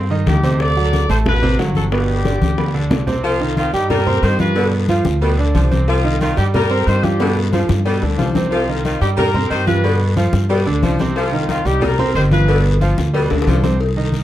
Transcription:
Already playing: upright bass G2
0.10 grand piano D#3 D#4 D#5, high bongo, high conga
0.26 upright bass D2, horn section D#4 G4, high bongo, low bongo, high conga, short guiro
0.43 grand piano C3 C4 C5, high bongo, high conga, short guiro
0.60 horn section A4 D5, high bongo, high conga, long guiro
0.76 grand piano F#3 F#4 F#5, high conga
0.93 high bongo, high conga, short guiro
1.09 upright bass A1, grand piano A3 A4 A5, horn section A4 C5, high conga, short guiro
1.26 horn section F#4 B4, high bongo, high conga, low conga, long guiro
1.42 grand piano C3 C4 C5, high conga, low conga
1.59 upright bass G1, grand piano F#3 F#4 F#5, high bongo, low bongo, high conga, short guiro
1.75 horn section F#4 A4, high conga, short guiro
1.92 grand piano B2 B3 B4, horn section D4 G4, high bongo, high conga, long guiro
2.09 high bongo, high conga
2.25 grand piano D3 D4 D5, high bongo, high conga, short guiro
2.41 upright bass D2, high conga, short guiro
2.58 grand piano B3 B4 B5, high bongo, high conga, long guiro
2.74 grand piano D3 D4 D5, high bongo
2.91 upright bass C2, high bongo, low bongo, low conga, short guiro
3.07 grand piano C3 C4 C5, high bongo, low conga, short guiro
3.24 saxophone section F3, horn section C4 F4, cowbell, high conga, long guiro
3.40 grand piano D#3 D#4 D#5, high conga
3.57 saxophone section D#3, horn section C4 F4, cowbell, high conga, short guiro
3.73 upright bass G2, grand piano G3 G4 G5, horn section D#4 G4, high conga, short guiro
3.90 saxophone section G3, horn section G4 A#4, cowbell, high conga, low conga, long guiro
4.06 grand piano C4 C5 C6, high conga, low conga
4.23 upright bass G2, saxophone section D#3, horn section G4 C5, cowbell, high conga, short guiro
4.39 grand piano F3 F4 F5, horn section G4 B4, cowbell, high conga, short guiro
4.55 grand piano B2 B3 B4, saxophone section D3, cowbell, high conga, long guiro
4.72 high conga
4.88 saxophone section F3, grand piano F3 F4 F5, cowbell, high conga, short guiro
5.05 upright bass D2, high conga, short guiro
5.21 grand piano B2 B3 B4, saxophone section G3, cowbell, high conga, long guiro
5.38 grand piano D3 D4 D5, high conga
5.54 upright bass C2, saxophone section F3, cowbell, high conga, short guiro
5.71 grand piano C3 C4 C5, cowbell, high conga, short guiro
5.88 saxophone section F3, horn section C4 F4, cowbell, high conga, long guiro
6.04 grand piano D#3 D#4 D#5, high conga
6.21 saxophone section D#3, horn section C4 F4, cowbell, high conga, short guiro
6.37 upright bass G2, grand piano G3 G4 G5, horn section D#4 G4, high conga, short guiro
6.54 saxophone section G3, horn section G4 A#4, cowbell, high conga, low conga, long guiro
6.71 grand piano C4 C5 C6, high conga
6.87 upright bass G2, saxophone section D#3, horn section G4 C5, cowbell, high conga, short guiro
7.03 grand piano F3 F4 F5, horn section D4 G4, cowbell, high conga, short guiro
7.20 grand piano B2 B3 B4, saxophone section D3, cowbell, high bongo, high conga, long guiro
7.37 high bongo, high conga
7.52 saxophone section F3, grand piano F3 F4 F5, cowbell, high bongo, high conga, short guiro
7.69 upright bass G2, low bongo, high conga, short guiro
7.86 grand piano B2 B3 B4, saxophone section G3, cowbell, high conga, long guiro
8.02 upright bass D2, grand piano D3 D4 D5, low bongo, high conga
8.18 upright bass C2, saxophone section F3, cowbell, low bongo, high conga, short guiro
8.35 grand piano C3 C4 C5, cowbell, low bongo, high conga, short guiro
8.51 saxophone section F3, horn section C4 F4, cowbell, high conga, long guiro
8.68 grand piano D#3 D#4 D#5, high conga
8.85 saxophone section D#3, horn section C4 F4, cowbell, high conga, short guiro
9.01 upright bass G2, grand piano G3 G4 G5, horn section D#4 G4, high conga, short guiro
9.17 saxophone section G3, horn section G4 A#4, cowbell, high conga, low conga, long guiro
9.34 grand piano C4 C5 C6, high conga, low conga
9.50 upright bass G2, saxophone section D#3, horn section G4 C5, cowbell, high conga, short guiro
9.67 grand piano F3 F4 F5, horn section G4 B4, cowbell, high conga, short guiro
9.84 grand piano B2 B3 B4, saxophone section D3, cowbell, high conga, long guiro
10.00 high conga
10.16 saxophone section F3, grand piano F3 F4 F5, cowbell, high conga, short guiro
10.33 upright bass G2, high conga, short guiro
10.49 grand piano B2 B3 B4, saxophone section G3, cowbell, high conga, long guiro
10.66 upright bass D2, grand piano D3 D4 D5, high conga
10.82 upright bass C2, saxophone section F3, cowbell, high conga, short guiro
10.99 grand piano C3 C4 C5, cowbell, high conga, short guiro
11.16 saxophone section F3, horn section C4 F4, cowbell, high conga, long guiro
11.32 grand piano D#3 D#4 D#5, high conga
11.49 saxophone section D#3, horn section C4 F4, cowbell, high conga, short guiro
11.65 upright bass C2, grand piano G3 G4 G5, horn section D#4 G4, high conga, short guiro
11.82 saxophone section G3, horn section G4 A#4, cowbell, high conga, low conga, long guiro
11.99 grand piano C4 C5 C6, high conga, low conga
12.14 upright bass G1, saxophone section D#3, horn section G4 C5, cowbell, high conga, short guiro
12.31 grand piano F3 F4 F5, horn section G4 B4, cowbell, high conga, short guiro
12.48 grand piano B2 B3 B4, saxophone section D3, cowbell, long guiro
12.65 high conga
12.81 grand piano F3 F4 F5, saxophone section F3, cowbell, high conga, short guiro
12.98 upright bass D2, high conga, short guiro
13.14 grand piano B2 B3 B4, saxophone section G3, cowbell, high conga, long guiro
13.31 upright bass D2, grand piano D3 D4 D5, high bongo, high conga
13.42 high bongo
13.47 upright bass C2, saxophone section F3, cowbell, high conga, short guiro
13.63 grand piano C3 C4 C5, cowbell, low bongo, high conga, short guiro
13.80 cowbell, high conga, long guiro
13.96 grand piano D#3 D#4 D#5, high conga
14.12 cowbell, high conga, short guiro

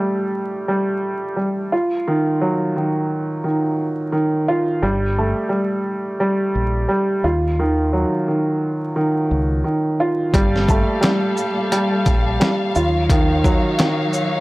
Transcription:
Already playing: grand piano G3 A3
0.68 grand piano G3
1.36 grand piano G3
1.72 grand piano F4
2.08 grand piano D#3
2.41 grand piano F#3
2.76 grand piano D#3
3.44 grand piano D#3
4.12 grand piano D#3
4.48 grand piano F4
4.82 fingered electric bass G1, grand piano G3
5.18 grand piano A3
5.49 grand piano G3
6.20 grand piano G3
6.55 fingered electric bass A#1
6.89 grand piano G3
7.24 fingered electric bass D#2, grand piano F4
7.60 grand piano D#3
7.93 grand piano F#3
8.28 grand piano D#3
8.96 grand piano D#3
9.31 fingered electric bass C#2
9.64 grand piano D#3
10.00 grand piano F4
10.34 fingered electric bass G1, string section A#2 G3 A4 F5, grand piano G3, kick, closed hi-hat
10.56 snare
10.69 grand piano A3, kick, shaker
11.01 grand piano G3, snare, closed hi-hat
11.37 shaker
11.72 grand piano G3, closed hi-hat
12.06 fingered electric bass A#1, kick, closed hi-hat, shaker
12.40 grand piano G3, snare, closed hi-hat
12.75 fingered electric bass D#2, string section F#3 D#4 C#5, grand piano F4, shaker
13.10 grand piano D#3, kick, closed hi-hat
13.44 grand piano F#3, kick, shaker
13.79 grand piano D#3, snare, closed hi-hat
14.13 shaker

